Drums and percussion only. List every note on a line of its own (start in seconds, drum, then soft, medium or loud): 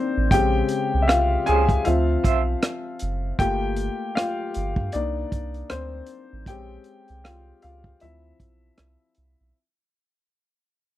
0.31 kick medium
0.31 closed hi-hat medium
0.69 closed hi-hat medium
1.09 cross-stick loud
1.09 closed hi-hat medium
1.47 closed hi-hat medium
1.69 kick medium
1.69 closed hi-hat soft
1.85 closed hi-hat medium
2.24 kick medium
2.24 closed hi-hat medium
2.62 cross-stick loud
2.62 closed hi-hat medium
2.99 closed hi-hat medium
3.39 kick medium
3.39 closed hi-hat medium
3.76 closed hi-hat medium
4.17 cross-stick loud
4.17 closed hi-hat medium
4.54 closed hi-hat medium
4.76 kick medium
4.92 closed hi-hat medium
5.32 kick medium
5.32 closed hi-hat medium
5.54 closed hi-hat soft
5.70 cross-stick loud
5.70 closed hi-hat medium
6.06 closed hi-hat medium
6.46 kick medium
6.46 closed hi-hat medium
6.84 closed hi-hat medium
7.08 closed hi-hat soft
7.25 cross-stick medium
7.25 closed hi-hat medium
7.62 closed hi-hat soft
7.84 kick medium
8.00 closed hi-hat medium
8.40 kick medium
8.40 closed hi-hat soft
8.78 cross-stick medium
8.78 closed hi-hat medium
9.15 closed hi-hat medium